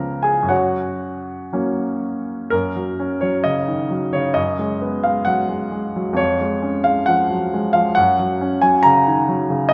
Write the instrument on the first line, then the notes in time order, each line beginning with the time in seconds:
grand piano
Already playing: C#2 F3 B3 C#4 A#4 A#5
0.23 G#4 G#5
0.43 F#2
0.49 F#4 C#5 F#5
1.53 F#3 A#3 C#4
2.50 F#2 A#4
2.76 F#3
3.00 C#4
3.21 F#3 C#5
3.44 C#3 D#5
3.68 D#3
3.90 F#3
4.13 C#3 C#5
4.34 F#2 D#5
4.59 G#3
4.82 B3
5.04 G#3 F5
5.25 F#3 F#5
5.49 G#3
5.72 G#3
5.96 F#3
6.13 F2 C#5
6.41 G#3
6.62 C#4
6.84 G#3 F5
7.06 F3 F#5
7.30 F#3
7.54 G#3
7.73 F3 F5
7.95 F#2 F#5
8.19 F#3
8.41 C#4
8.62 F#3 G#5
8.83 C#3 A#5
9.07 D#3
9.28 F#3
9.50 C#3
9.69 D#5